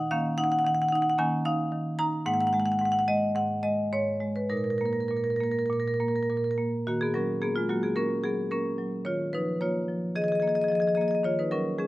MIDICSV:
0, 0, Header, 1, 2, 480
1, 0, Start_track
1, 0, Key_signature, -6, "minor"
1, 0, Tempo, 543971
1, 100, Time_signature, 4, 2, 24, 8
1, 3461, Tempo, 588235
1, 5861, Tempo, 545455
1, 10268, End_track
2, 0, Start_track
2, 0, Title_t, "Marimba"
2, 0, Program_c, 0, 12
2, 0, Note_on_c, 0, 51, 81
2, 0, Note_on_c, 0, 63, 86
2, 0, Note_on_c, 0, 78, 117
2, 89, Note_off_c, 0, 51, 0
2, 95, Note_off_c, 0, 63, 0
2, 95, Note_off_c, 0, 78, 0
2, 96, Note_on_c, 0, 77, 101
2, 100, Note_on_c, 0, 51, 89
2, 100, Note_on_c, 0, 61, 63
2, 103, Note_on_c, 0, 58, 62
2, 325, Note_off_c, 0, 77, 0
2, 333, Note_on_c, 0, 78, 114
2, 334, Note_on_c, 0, 63, 83
2, 386, Note_off_c, 0, 78, 0
2, 386, Note_on_c, 0, 78, 96
2, 456, Note_off_c, 0, 78, 0
2, 456, Note_on_c, 0, 78, 100
2, 518, Note_off_c, 0, 78, 0
2, 518, Note_on_c, 0, 78, 94
2, 559, Note_off_c, 0, 51, 0
2, 570, Note_on_c, 0, 51, 79
2, 587, Note_off_c, 0, 78, 0
2, 587, Note_on_c, 0, 78, 103
2, 658, Note_off_c, 0, 78, 0
2, 658, Note_on_c, 0, 78, 88
2, 721, Note_off_c, 0, 78, 0
2, 721, Note_on_c, 0, 78, 101
2, 781, Note_off_c, 0, 78, 0
2, 781, Note_on_c, 0, 78, 93
2, 805, Note_off_c, 0, 63, 0
2, 815, Note_on_c, 0, 63, 81
2, 842, Note_off_c, 0, 78, 0
2, 842, Note_on_c, 0, 78, 94
2, 901, Note_off_c, 0, 78, 0
2, 901, Note_on_c, 0, 78, 90
2, 966, Note_off_c, 0, 78, 0
2, 966, Note_on_c, 0, 78, 94
2, 1010, Note_off_c, 0, 61, 0
2, 1011, Note_off_c, 0, 58, 0
2, 1014, Note_off_c, 0, 78, 0
2, 1029, Note_off_c, 0, 51, 0
2, 1041, Note_off_c, 0, 63, 0
2, 1045, Note_on_c, 0, 58, 63
2, 1047, Note_on_c, 0, 61, 63
2, 1048, Note_on_c, 0, 51, 94
2, 1048, Note_on_c, 0, 80, 112
2, 1274, Note_off_c, 0, 80, 0
2, 1282, Note_on_c, 0, 77, 106
2, 1286, Note_on_c, 0, 63, 86
2, 1506, Note_off_c, 0, 51, 0
2, 1516, Note_on_c, 0, 51, 80
2, 1742, Note_off_c, 0, 77, 0
2, 1747, Note_off_c, 0, 63, 0
2, 1753, Note_on_c, 0, 82, 114
2, 1758, Note_on_c, 0, 63, 81
2, 1966, Note_off_c, 0, 58, 0
2, 1967, Note_off_c, 0, 61, 0
2, 1984, Note_off_c, 0, 51, 0
2, 1988, Note_off_c, 0, 82, 0
2, 1992, Note_off_c, 0, 63, 0
2, 1992, Note_on_c, 0, 44, 88
2, 1993, Note_on_c, 0, 56, 62
2, 1995, Note_on_c, 0, 78, 112
2, 1996, Note_on_c, 0, 58, 64
2, 2061, Note_off_c, 0, 78, 0
2, 2061, Note_on_c, 0, 78, 93
2, 2122, Note_off_c, 0, 78, 0
2, 2122, Note_on_c, 0, 78, 100
2, 2180, Note_off_c, 0, 78, 0
2, 2180, Note_on_c, 0, 78, 93
2, 2229, Note_off_c, 0, 56, 0
2, 2230, Note_off_c, 0, 78, 0
2, 2230, Note_on_c, 0, 78, 95
2, 2240, Note_on_c, 0, 56, 77
2, 2291, Note_off_c, 0, 78, 0
2, 2291, Note_on_c, 0, 78, 87
2, 2343, Note_off_c, 0, 78, 0
2, 2343, Note_on_c, 0, 78, 96
2, 2398, Note_off_c, 0, 78, 0
2, 2398, Note_on_c, 0, 78, 86
2, 2461, Note_off_c, 0, 78, 0
2, 2461, Note_on_c, 0, 78, 99
2, 2472, Note_off_c, 0, 44, 0
2, 2482, Note_on_c, 0, 44, 63
2, 2518, Note_off_c, 0, 78, 0
2, 2518, Note_on_c, 0, 78, 88
2, 2574, Note_off_c, 0, 78, 0
2, 2574, Note_on_c, 0, 78, 96
2, 2637, Note_off_c, 0, 78, 0
2, 2637, Note_on_c, 0, 78, 90
2, 2694, Note_off_c, 0, 78, 0
2, 2704, Note_off_c, 0, 56, 0
2, 2715, Note_on_c, 0, 56, 76
2, 2717, Note_on_c, 0, 75, 108
2, 2950, Note_off_c, 0, 44, 0
2, 2953, Note_off_c, 0, 75, 0
2, 2961, Note_on_c, 0, 44, 69
2, 2963, Note_on_c, 0, 78, 105
2, 3192, Note_off_c, 0, 56, 0
2, 3200, Note_off_c, 0, 78, 0
2, 3202, Note_on_c, 0, 75, 97
2, 3203, Note_on_c, 0, 56, 70
2, 3447, Note_off_c, 0, 75, 0
2, 3452, Note_off_c, 0, 44, 0
2, 3462, Note_on_c, 0, 44, 64
2, 3465, Note_on_c, 0, 73, 95
2, 3682, Note_off_c, 0, 56, 0
2, 3692, Note_on_c, 0, 56, 69
2, 3803, Note_off_c, 0, 73, 0
2, 3816, Note_on_c, 0, 71, 77
2, 3903, Note_off_c, 0, 58, 0
2, 3921, Note_off_c, 0, 56, 0
2, 3923, Note_off_c, 0, 44, 0
2, 3929, Note_on_c, 0, 70, 76
2, 3930, Note_on_c, 0, 63, 43
2, 3931, Note_on_c, 0, 46, 66
2, 3931, Note_on_c, 0, 56, 50
2, 3937, Note_off_c, 0, 71, 0
2, 3990, Note_off_c, 0, 70, 0
2, 3990, Note_on_c, 0, 70, 58
2, 4048, Note_off_c, 0, 70, 0
2, 4048, Note_on_c, 0, 70, 62
2, 4099, Note_off_c, 0, 70, 0
2, 4099, Note_on_c, 0, 70, 65
2, 4161, Note_off_c, 0, 70, 0
2, 4161, Note_on_c, 0, 70, 67
2, 4185, Note_on_c, 0, 58, 63
2, 4222, Note_off_c, 0, 70, 0
2, 4222, Note_on_c, 0, 70, 62
2, 4281, Note_off_c, 0, 70, 0
2, 4281, Note_on_c, 0, 70, 65
2, 4344, Note_off_c, 0, 70, 0
2, 4344, Note_on_c, 0, 70, 58
2, 4408, Note_off_c, 0, 70, 0
2, 4408, Note_on_c, 0, 70, 69
2, 4421, Note_off_c, 0, 46, 0
2, 4431, Note_on_c, 0, 46, 58
2, 4475, Note_off_c, 0, 70, 0
2, 4475, Note_on_c, 0, 70, 61
2, 4536, Note_off_c, 0, 70, 0
2, 4536, Note_on_c, 0, 70, 68
2, 4587, Note_off_c, 0, 70, 0
2, 4587, Note_on_c, 0, 70, 59
2, 4636, Note_off_c, 0, 70, 0
2, 4636, Note_on_c, 0, 70, 66
2, 4661, Note_off_c, 0, 58, 0
2, 4671, Note_on_c, 0, 58, 63
2, 4695, Note_off_c, 0, 70, 0
2, 4695, Note_on_c, 0, 70, 58
2, 4760, Note_off_c, 0, 70, 0
2, 4760, Note_on_c, 0, 70, 66
2, 4819, Note_off_c, 0, 70, 0
2, 4819, Note_on_c, 0, 70, 63
2, 4878, Note_off_c, 0, 70, 0
2, 4878, Note_on_c, 0, 70, 65
2, 4902, Note_off_c, 0, 46, 0
2, 4912, Note_on_c, 0, 46, 66
2, 4934, Note_off_c, 0, 70, 0
2, 4934, Note_on_c, 0, 70, 64
2, 4991, Note_off_c, 0, 70, 0
2, 4991, Note_on_c, 0, 70, 66
2, 5055, Note_off_c, 0, 70, 0
2, 5055, Note_on_c, 0, 70, 64
2, 5107, Note_off_c, 0, 70, 0
2, 5107, Note_on_c, 0, 70, 69
2, 5148, Note_off_c, 0, 58, 0
2, 5158, Note_on_c, 0, 58, 66
2, 5159, Note_off_c, 0, 70, 0
2, 5159, Note_on_c, 0, 70, 61
2, 5224, Note_off_c, 0, 70, 0
2, 5224, Note_on_c, 0, 70, 68
2, 5284, Note_off_c, 0, 70, 0
2, 5284, Note_on_c, 0, 70, 58
2, 5342, Note_off_c, 0, 70, 0
2, 5342, Note_on_c, 0, 70, 65
2, 5392, Note_off_c, 0, 46, 0
2, 5399, Note_off_c, 0, 70, 0
2, 5399, Note_on_c, 0, 70, 61
2, 5401, Note_on_c, 0, 46, 61
2, 5459, Note_off_c, 0, 70, 0
2, 5459, Note_on_c, 0, 70, 65
2, 5518, Note_off_c, 0, 70, 0
2, 5518, Note_on_c, 0, 70, 60
2, 5571, Note_off_c, 0, 70, 0
2, 5571, Note_on_c, 0, 70, 69
2, 5595, Note_off_c, 0, 70, 0
2, 5620, Note_off_c, 0, 58, 0
2, 5629, Note_on_c, 0, 58, 62
2, 5827, Note_off_c, 0, 56, 0
2, 5827, Note_off_c, 0, 63, 0
2, 5852, Note_off_c, 0, 46, 0
2, 5855, Note_off_c, 0, 58, 0
2, 5867, Note_on_c, 0, 66, 84
2, 5868, Note_on_c, 0, 51, 63
2, 5878, Note_on_c, 0, 58, 55
2, 5984, Note_off_c, 0, 58, 0
2, 5987, Note_off_c, 0, 66, 0
2, 5989, Note_on_c, 0, 68, 80
2, 6003, Note_on_c, 0, 59, 61
2, 6104, Note_on_c, 0, 54, 53
2, 6105, Note_on_c, 0, 70, 76
2, 6107, Note_off_c, 0, 59, 0
2, 6108, Note_off_c, 0, 68, 0
2, 6116, Note_on_c, 0, 61, 61
2, 6335, Note_off_c, 0, 61, 0
2, 6336, Note_off_c, 0, 70, 0
2, 6348, Note_on_c, 0, 58, 50
2, 6348, Note_on_c, 0, 68, 78
2, 6360, Note_on_c, 0, 59, 66
2, 6465, Note_off_c, 0, 59, 0
2, 6468, Note_off_c, 0, 68, 0
2, 6471, Note_on_c, 0, 65, 71
2, 6487, Note_on_c, 0, 56, 60
2, 6490, Note_off_c, 0, 54, 0
2, 6589, Note_off_c, 0, 56, 0
2, 6589, Note_off_c, 0, 65, 0
2, 6589, Note_on_c, 0, 54, 55
2, 6591, Note_off_c, 0, 58, 0
2, 6592, Note_on_c, 0, 66, 68
2, 6602, Note_on_c, 0, 58, 58
2, 6707, Note_off_c, 0, 58, 0
2, 6710, Note_off_c, 0, 66, 0
2, 6712, Note_on_c, 0, 68, 65
2, 6722, Note_on_c, 0, 59, 47
2, 6801, Note_off_c, 0, 51, 0
2, 6822, Note_on_c, 0, 58, 53
2, 6824, Note_on_c, 0, 70, 85
2, 6827, Note_off_c, 0, 59, 0
2, 6830, Note_off_c, 0, 68, 0
2, 6833, Note_on_c, 0, 61, 64
2, 6972, Note_off_c, 0, 54, 0
2, 7054, Note_off_c, 0, 61, 0
2, 7057, Note_off_c, 0, 70, 0
2, 7069, Note_on_c, 0, 68, 77
2, 7073, Note_on_c, 0, 54, 53
2, 7083, Note_on_c, 0, 59, 58
2, 7210, Note_off_c, 0, 58, 0
2, 7300, Note_off_c, 0, 68, 0
2, 7301, Note_off_c, 0, 59, 0
2, 7310, Note_on_c, 0, 70, 72
2, 7311, Note_on_c, 0, 58, 54
2, 7317, Note_on_c, 0, 61, 61
2, 7457, Note_off_c, 0, 54, 0
2, 7550, Note_on_c, 0, 54, 53
2, 7697, Note_off_c, 0, 58, 0
2, 7762, Note_off_c, 0, 61, 0
2, 7773, Note_off_c, 0, 70, 0
2, 7784, Note_on_c, 0, 73, 78
2, 7785, Note_on_c, 0, 51, 58
2, 7791, Note_off_c, 0, 54, 0
2, 7797, Note_on_c, 0, 65, 64
2, 8018, Note_off_c, 0, 65, 0
2, 8019, Note_off_c, 0, 73, 0
2, 8032, Note_on_c, 0, 71, 81
2, 8034, Note_on_c, 0, 53, 49
2, 8046, Note_on_c, 0, 63, 62
2, 8265, Note_off_c, 0, 63, 0
2, 8265, Note_off_c, 0, 71, 0
2, 8276, Note_on_c, 0, 58, 52
2, 8277, Note_on_c, 0, 73, 79
2, 8285, Note_on_c, 0, 65, 59
2, 8422, Note_off_c, 0, 53, 0
2, 8518, Note_on_c, 0, 53, 46
2, 8665, Note_off_c, 0, 58, 0
2, 8728, Note_off_c, 0, 51, 0
2, 8732, Note_off_c, 0, 65, 0
2, 8743, Note_off_c, 0, 73, 0
2, 8758, Note_on_c, 0, 68, 70
2, 8761, Note_on_c, 0, 75, 87
2, 8762, Note_on_c, 0, 51, 57
2, 8813, Note_off_c, 0, 75, 0
2, 8813, Note_on_c, 0, 75, 66
2, 8831, Note_off_c, 0, 68, 0
2, 8831, Note_on_c, 0, 68, 59
2, 8870, Note_off_c, 0, 75, 0
2, 8870, Note_on_c, 0, 75, 74
2, 8903, Note_off_c, 0, 68, 0
2, 8903, Note_on_c, 0, 68, 62
2, 8904, Note_off_c, 0, 53, 0
2, 8932, Note_off_c, 0, 75, 0
2, 8932, Note_on_c, 0, 75, 67
2, 8972, Note_off_c, 0, 68, 0
2, 8972, Note_on_c, 0, 68, 58
2, 8993, Note_off_c, 0, 75, 0
2, 8993, Note_on_c, 0, 75, 72
2, 8998, Note_on_c, 0, 58, 47
2, 9041, Note_off_c, 0, 68, 0
2, 9041, Note_on_c, 0, 68, 64
2, 9052, Note_off_c, 0, 75, 0
2, 9052, Note_on_c, 0, 75, 70
2, 9108, Note_off_c, 0, 75, 0
2, 9108, Note_on_c, 0, 75, 71
2, 9109, Note_off_c, 0, 68, 0
2, 9109, Note_on_c, 0, 68, 54
2, 9162, Note_off_c, 0, 75, 0
2, 9162, Note_on_c, 0, 75, 73
2, 9184, Note_off_c, 0, 68, 0
2, 9184, Note_on_c, 0, 68, 60
2, 9223, Note_off_c, 0, 75, 0
2, 9223, Note_on_c, 0, 75, 78
2, 9238, Note_on_c, 0, 53, 49
2, 9253, Note_off_c, 0, 68, 0
2, 9253, Note_on_c, 0, 68, 59
2, 9284, Note_off_c, 0, 75, 0
2, 9284, Note_on_c, 0, 75, 73
2, 9325, Note_off_c, 0, 68, 0
2, 9325, Note_on_c, 0, 68, 62
2, 9341, Note_off_c, 0, 75, 0
2, 9341, Note_on_c, 0, 75, 78
2, 9375, Note_off_c, 0, 58, 0
2, 9391, Note_off_c, 0, 68, 0
2, 9391, Note_on_c, 0, 68, 58
2, 9400, Note_off_c, 0, 75, 0
2, 9400, Note_on_c, 0, 75, 66
2, 9456, Note_off_c, 0, 75, 0
2, 9456, Note_on_c, 0, 75, 79
2, 9457, Note_off_c, 0, 68, 0
2, 9457, Note_on_c, 0, 68, 60
2, 9477, Note_on_c, 0, 58, 56
2, 9512, Note_off_c, 0, 75, 0
2, 9512, Note_on_c, 0, 75, 66
2, 9519, Note_off_c, 0, 68, 0
2, 9519, Note_on_c, 0, 68, 56
2, 9571, Note_off_c, 0, 75, 0
2, 9571, Note_on_c, 0, 75, 75
2, 9597, Note_off_c, 0, 68, 0
2, 9597, Note_on_c, 0, 68, 61
2, 9612, Note_off_c, 0, 53, 0
2, 9631, Note_off_c, 0, 75, 0
2, 9631, Note_on_c, 0, 75, 73
2, 9669, Note_off_c, 0, 68, 0
2, 9671, Note_off_c, 0, 75, 0
2, 9679, Note_off_c, 0, 51, 0
2, 9709, Note_on_c, 0, 51, 58
2, 9710, Note_off_c, 0, 58, 0
2, 9716, Note_on_c, 0, 73, 86
2, 9723, Note_on_c, 0, 65, 58
2, 9826, Note_off_c, 0, 65, 0
2, 9831, Note_off_c, 0, 73, 0
2, 9843, Note_on_c, 0, 71, 65
2, 9849, Note_on_c, 0, 63, 51
2, 9950, Note_off_c, 0, 63, 0
2, 9951, Note_on_c, 0, 54, 53
2, 9952, Note_on_c, 0, 70, 76
2, 9955, Note_off_c, 0, 71, 0
2, 9958, Note_on_c, 0, 61, 62
2, 10176, Note_off_c, 0, 61, 0
2, 10179, Note_off_c, 0, 70, 0
2, 10190, Note_on_c, 0, 56, 48
2, 10193, Note_on_c, 0, 68, 76
2, 10202, Note_on_c, 0, 61, 52
2, 10268, Note_off_c, 0, 51, 0
2, 10268, Note_off_c, 0, 54, 0
2, 10268, Note_off_c, 0, 56, 0
2, 10268, Note_off_c, 0, 61, 0
2, 10268, Note_off_c, 0, 68, 0
2, 10268, End_track
0, 0, End_of_file